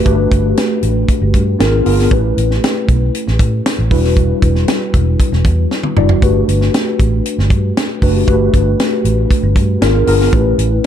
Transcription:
Already playing: A3 D4 F#4 G4 B4
0.05 G1 A3 D4 F#4 G4 B4, kick, closed hi-hat
0.32 G1, kick, closed hi-hat
0.57 snare, closed hi-hat
0.83 A1, closed hi-hat
1.09 kick, closed hi-hat
1.21 G1
1.34 G2, kick, closed hi-hat
1.59 G#1 B3 D4 F4 G#4 A#4, snare, closed hi-hat
1.85 G1 B3 D4 F4 G#4 A#4, open hi-hat
1.99 snare
2.11 A1 A3 C#4 E4 G4 B4, kick, closed hi-hat
2.37 A1, closed hi-hat
2.51 snare
2.64 snare, closed hi-hat
2.89 B1, kick, closed hi-hat
3.15 closed hi-hat
3.28 A1, snare
3.39 A2, kick, closed hi-hat
3.66 snare, closed hi-hat
3.79 A1
3.90 E1 G3 D4 E4 F#4 B4, kick, open hi-hat
4.04 snare
4.17 kick, closed hi-hat
4.42 E1, kick, closed hi-hat
4.55 snare
4.68 snare, closed hi-hat
4.94 E1, kick, closed hi-hat
5.20 kick, closed hi-hat
5.32 E1, snare
5.45 E2, kick, closed hi-hat
5.71 snare
5.83 high tom
5.96 F#1 G3 D4 E4 F#4 D5, mid tom
6.09 floor tom
6.22 G1 A3 D4 F#4 G4 B4, kick, closed hi-hat
6.48 G1, closed hi-hat
6.61 snare
6.74 snare, closed hi-hat
7.00 A1, kick, closed hi-hat
7.26 closed hi-hat
7.38 G1, snare
7.50 G2, kick, closed hi-hat
7.77 snare, closed hi-hat
8.02 F#1 A3 D4 F#4 G4 B4, kick, open hi-hat
8.27 G1 A3 D4 F#4 G4 B4, kick, closed hi-hat
8.54 G1, kick, closed hi-hat
8.80 snare, closed hi-hat
9.04 A1, closed hi-hat
9.31 kick, closed hi-hat
9.43 G1
9.56 G2, kick, closed hi-hat
9.81 G#1 B3 D4 F4 G#4 A#4, snare, closed hi-hat
10.07 G1 B3 D4 F4 G#4 A#4, open hi-hat
10.21 snare
10.33 A1 A3 C#4 E4 G4 B4, kick, closed hi-hat
10.58 A1, closed hi-hat

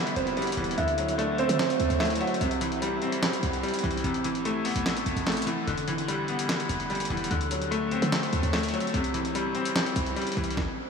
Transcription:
Already playing: E1 D3 E3 G3 B3
0.07 closed hi-hat
0.16 E1 C4 C5, closed hi-hat
0.27 closed hi-hat
0.37 G3 B3 B4, closed hi-hat
0.42 closed hi-hat
0.47 closed hi-hat
0.52 closed hi-hat
0.57 E1 E3, closed hi-hat
0.64 closed hi-hat
0.71 closed hi-hat
0.78 D2 D3 E4 E5, closed hi-hat
0.88 closed hi-hat
0.98 F#3, closed hi-hat
1.09 closed hi-hat
1.18 A3 D4 D5, closed hi-hat
1.38 C4 C5, closed hi-hat
1.49 D3, closed hi-hat
1.59 C4 C5, snare, clap, closed hi-hat
1.70 closed hi-hat
1.80 D2, closed hi-hat
1.90 D2, closed hi-hat
2.00 A3 E4 E5, snare, clap, closed hi-hat
2.05 closed hi-hat
2.10 closed hi-hat
2.15 closed hi-hat
2.21 F#3 F#4 F#5, closed hi-hat
2.27 closed hi-hat
2.34 closed hi-hat
2.41 C2 C3, closed hi-hat
2.51 closed hi-hat
2.61 E3, closed hi-hat
2.72 closed hi-hat
2.82 G3, closed hi-hat
3.02 C4, closed hi-hat
3.12 closed hi-hat
3.23 snare, clap, closed hi-hat
3.33 closed hi-hat
3.43 C2, closed hi-hat
3.53 closed hi-hat
3.63 G3, closed hi-hat
3.69 closed hi-hat
3.74 closed hi-hat
3.79 closed hi-hat
3.84 C2 E3, closed hi-hat
3.91 closed hi-hat
3.97 closed hi-hat
4.04 A1 C3, closed hi-hat
4.14 closed hi-hat
4.24 E3, closed hi-hat
4.35 closed hi-hat
4.45 A3, closed hi-hat
4.65 B3, open hi-hat
4.76 A1, closed hi-hat
4.86 snare, clap, closed hi-hat
4.97 closed hi-hat
5.06 A1, closed hi-hat
5.16 A1, closed hi-hat
5.27 A3, snare, clap, closed hi-hat
5.32 closed hi-hat
5.37 closed hi-hat
5.42 closed hi-hat
5.47 E3, closed hi-hat
5.67 E1 D3, closed hi-hat
5.78 closed hi-hat
5.88 E3, closed hi-hat
5.98 closed hi-hat
6.08 G3, closed hi-hat
6.28 B3, closed hi-hat
6.39 closed hi-hat
6.49 snare, clap, closed hi-hat
6.60 closed hi-hat
6.69 E1, closed hi-hat
6.80 closed hi-hat
6.90 G3, closed hi-hat
6.95 closed hi-hat
7.00 closed hi-hat
7.05 closed hi-hat
7.10 E1 E3, closed hi-hat
7.17 closed hi-hat
7.24 closed hi-hat
7.31 D2 D3, closed hi-hat
7.41 closed hi-hat
7.51 F#3, closed hi-hat
7.62 closed hi-hat
7.71 A3, closed hi-hat
7.91 C4, closed hi-hat
8.02 D3, closed hi-hat
8.12 snare, clap, closed hi-hat
8.23 closed hi-hat
8.33 D2, closed hi-hat
8.43 D2, closed hi-hat
8.53 A3, snare, clap, closed hi-hat
8.58 closed hi-hat
8.63 closed hi-hat
8.69 closed hi-hat
8.74 F#3, closed hi-hat
8.80 closed hi-hat
8.87 closed hi-hat
8.94 C2 C3, closed hi-hat
9.04 closed hi-hat
9.14 E3, closed hi-hat
9.25 closed hi-hat
9.35 G3, closed hi-hat
9.55 C4, closed hi-hat
9.65 closed hi-hat
9.76 snare, clap, closed hi-hat
9.86 closed hi-hat
9.96 C2, closed hi-hat
10.06 closed hi-hat
10.16 G3, closed hi-hat
10.22 closed hi-hat
10.27 closed hi-hat
10.32 closed hi-hat
10.37 C2 E3, closed hi-hat
10.44 closed hi-hat
10.50 closed hi-hat
10.57 kick, snare, swell

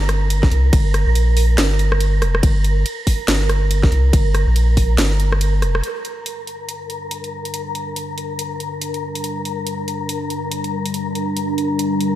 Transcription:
Already playing: G1 A#4
0.09 cross-stick, closed hi-hat
0.30 closed hi-hat, ride
0.43 kick, snare
0.52 C2, closed hi-hat
0.73 G1, kick, closed hi-hat, ride
0.94 cross-stick, closed hi-hat
1.07 A#1
1.15 closed hi-hat, ride
1.37 open hi-hat
1.58 G1, snare, closed hi-hat, ride
1.79 closed hi-hat
1.92 cross-stick
2.01 closed hi-hat, ride
2.22 F1, cross-stick, closed hi-hat
2.35 cross-stick
2.43 G1, kick, closed hi-hat, ride
2.64 closed hi-hat
2.86 closed hi-hat, ride
3.07 kick, open hi-hat
3.28 G1, snare, closed hi-hat, ride
3.49 cross-stick, closed hi-hat
3.71 closed hi-hat, ride
3.83 kick, snare
3.92 C2, closed hi-hat
4.13 G1, kick, closed hi-hat, ride
4.35 cross-stick, closed hi-hat
4.47 A#1
4.56 closed hi-hat, ride
4.77 kick, open hi-hat
4.98 G1, snare, closed hi-hat, ride
5.20 closed hi-hat
5.32 cross-stick
5.41 closed hi-hat, ride
5.62 F1, cross-stick, closed hi-hat
5.75 cross-stick
5.83 G3 D4 A#4, closed hi-hat
6.05 closed hi-hat
6.26 closed hi-hat
6.47 closed hi-hat
6.69 closed hi-hat
6.90 closed hi-hat
7.11 closed hi-hat
7.24 closed hi-hat
7.45 closed hi-hat
7.54 closed hi-hat
7.75 closed hi-hat
7.96 closed hi-hat
8.18 closed hi-hat
8.39 closed hi-hat
8.60 closed hi-hat
8.82 closed hi-hat
8.94 closed hi-hat
9.15 closed hi-hat
9.24 closed hi-hat
9.45 closed hi-hat
9.67 closed hi-hat
9.88 closed hi-hat
10.09 closed hi-hat
10.30 closed hi-hat
10.52 closed hi-hat
10.64 closed hi-hat
10.86 closed hi-hat
10.94 closed hi-hat
11.15 closed hi-hat
11.37 closed hi-hat
11.58 closed hi-hat
11.79 closed hi-hat
12.01 closed hi-hat

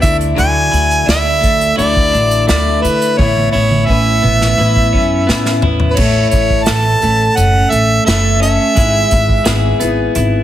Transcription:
0.02 D2 D3 A3 D4 E4 E5, kick, closed hi-hat
0.21 closed hi-hat
0.36 D2 D3 F#3 A3 D4 E4 G#5, closed hi-hat
0.72 D2 E4, closed hi-hat
0.91 closed hi-hat
1.07 D2 F#3 A3 D4 E4 E5, snare, closed hi-hat
1.41 A3, kick, closed hi-hat
1.61 closed hi-hat
1.77 D2 D3 F#3 A3 D4 E4 D5, closed hi-hat
1.96 kick
2.12 A1 D4, closed hi-hat
2.31 closed hi-hat
2.48 D2 F#3 A3 D4 E4 D5, snare, closed hi-hat
2.82 D3 D4 E4 B4, closed hi-hat
2.87 A3
3.02 closed hi-hat
3.17 A1 A2 E3 B3 C#4 E4 C#5, kick, high tom
3.36 high tom
3.52 A1 B3 C#4 E4 C#5
3.71 high tom
3.86 A1 E3 B3 C#4 E5, kick
3.91 C#4 E4
4.22 A1 B3, mid tom
4.41 snare
4.58 A1 A2 E3 B3 C#4 E4
4.76 kick
4.93 F#2 C#4, kick
5.27 A2 E3 B3 C#4 E4, snare
5.46 snare
5.62 A1 B3 C#4 E4, floor tom
5.80 floor tom
5.90 B4 C#5
5.96 A1 A2 E3 A3 C#4 A4, kick, crash
6.30 A1 C#5, kick, closed hi-hat
6.50 kick
6.64 E3 A3 A5, snare, closed hi-hat
6.68 A1 C#4 A4
7.01 A1 A3 C#4 A4, closed hi-hat
7.36 F#1 C#4 F#5, closed hi-hat
7.70 A1 A3 E5, closed hi-hat
8.05 F#1 E3 A3 C#4 A4 E5, snare, closed hi-hat
8.09 A4
8.42 A3 C#4 A4 E5, closed hi-hat
8.76 G#1 G#3 B3 E4 G#4, kick, closed hi-hat
9.11 G#1, kick, closed hi-hat
9.29 kick
9.44 G#1 G#3 B3 G#4, snare, closed hi-hat
9.50 E4 G#4
9.80 G#1 B3 E4 G#4, closed hi-hat
9.84 B3
10.15 G#1 E4, closed hi-hat

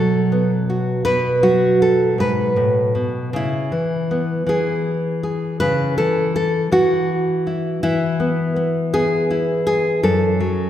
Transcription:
Already playing: B2 F#3 A4
0.32 B3
0.70 F#4
1.05 B2 B4
1.43 F#3 F#4
1.82 A4
2.18 G#2 B4
2.56 A2
2.95 B2
3.33 C#3 E4
3.72 E3
4.11 B3
4.46 E3 G#4
5.23 G#4
5.60 C#3 B4
5.98 E3 A4
6.36 A4
6.72 E3 F#4
7.47 E4
7.83 E3 E4
8.20 B3
8.56 B3
8.93 B3 G#4
9.31 E4
9.67 G#4
10.03 F#2 A4
10.40 F#3

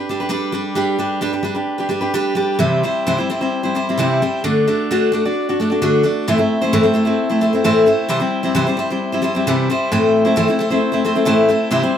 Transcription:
0.09 G3 D4 G4 B4
0.20 D4 G4 B4
0.29 G3 D4 G4 B4
0.52 G3 D4 G4 B4
0.75 G3 D4 G4 B4
0.99 G3 D4 G4 B4
1.21 G3 D4 G4 B4
1.33 D4 G4 B4
1.43 G3 D4 G4 B4
1.55 D4 G4 B4
1.78 D4 G4 B4
1.89 G3 D4 G4 B4
2.01 D4 G4 B4
2.14 G3 D4 G4 B4
2.35 G3 D4 G4 B4
2.59 C3 E3 G3 C4 E4 C5
2.83 G3 C4 E4 C5
3.06 C3 E3 G3 C4 E4 C5
3.18 G3 C4 E4 C5
3.30 G3 C4 E4 C5
3.41 G3 C4 E4 C5
3.63 G3 C4 E4 C5
3.75 G3 C4 E4 C5
3.89 G3 C4 E4 C5
3.97 C3 E3 G3 C4 E4 C5
4.22 G3 C4 E4 C5
4.44 D3 A3 D4 F#4 D5
4.67 A3 D4 F#4 D5
4.91 D3 A3 D4 F#4 D5
5.12 A3 D4 F#4 D5
5.25 D4 F#4 D5
5.49 D4 F#4 D5
5.60 A3 D4 F#4 D5
5.70 D4 F#4 D5
5.82 D3 A3 D4 F#4 D5
6.03 A3 D4 F#4 D5
6.28 A2 E3 A3 C4 E4 C5
6.38 A3 C4 E4 C5
6.61 A3 C4 E4 C5
6.73 A2 E3 A3 C4 E4 C5
6.83 A3 C4 E4 C5
6.94 A3 C4 E4 C5
7.05 A3 C4 E4 C5
7.29 A3 C4 E4 C5
7.41 A3 C4 E4 C5
7.53 A3 C4 E4 C5
7.64 A2 E3 A3 C4 E4 C5
7.86 A3 C4 E4 C5
8.09 C3 E3 G3 C4 E4 C5
8.20 G3 C4 E4 C5
8.43 G3 C4 E4 C5
8.55 C3 E3 G3 C4 E4 C5
8.67 G3 C4 E4 C5
8.77 G3 C4 E4 C5
8.90 G3 C4 E4 C5
9.12 G3 C4 E4 C5
9.22 G3 C4 E4 C5
9.35 G3 C4 E4 C5
9.47 C3 E3 G3 C4 E4 C5
9.70 G3 C4 E4 C5
9.92 A2 E3 A3 C4 E4 C5
10.25 A3 C4 E4 C5
10.36 A2 E3 A3 C4 E4 C5
10.48 A3 C4 E4 C5
10.59 A3 C4 E4 C5
10.70 A3 C4 E4 C5
10.92 A3 C4 E4 C5
11.05 A3 C4 E4 C5
11.15 A3 C4 E4 C5
11.25 A2 E3 A3 C4 E4 C5
11.49 A3 C4 E4 C5
11.71 C3 E3 G3 C4 E4 C5
11.83 G3 C4 E4 C5

